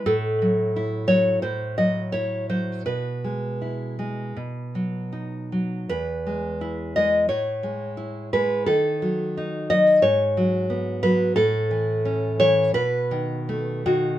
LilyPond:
\new Staff \with { instrumentName = "Nylon-string guitar" } { \clef bass \time 4/4 \key e \major \tempo 4 = 86 << { a'4. cis''8 c''8 dis''8 cis''8 c''8 | b'2. r4 | b'4. dis''8 cis''4. b'8 | a'4. dis''8 cis''4. b'8 |
a'4. cis''8 b'4. fis'8 | } \\ { a,8 fis8 e'8 fis8 a,8 fis8 e'8 fis8 | b,8 gis8 e'8 gis8 b,8 fis8 dis'8 fis8 | e,8 gis8 e'8 gis8 a,8 gis8 e'8 gis8 | dis8 fis8 dis'8 fis8 gis,8 fis8 b8 fis8 |
a,8 e8 cis'8 e8 b,8 dis8 a8 dis8 | } >> }